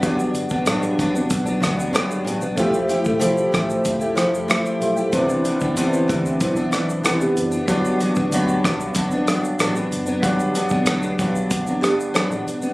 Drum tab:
HH |x-x-x-x-x-x-x-x-|x-x-x-x-x-x-x-x-|x-x-x-x-x-x-x-x-|x-x-x-x-x-x-x-x-|
SH |xxxxxxxxxxxxxxxx|xxxxxxxxxxxxxxxx|xxxxxxxxxxxxxxxx|xxxxxxxxxxxxxxxx|
SD |----r-----r-r---|------r---r-r---|----------r-r---|------r---r-r---|
BD |o--o--o-o-------|o--o--o-o-------|o--o--o-o-------|o--o--o-o-------|

HH |x-x-x-x-x-x-x-x-|
SH |xxxxxxxxxxxxxxxx|
SD |----r-----r-r---|
BD |o--o--o-o-------|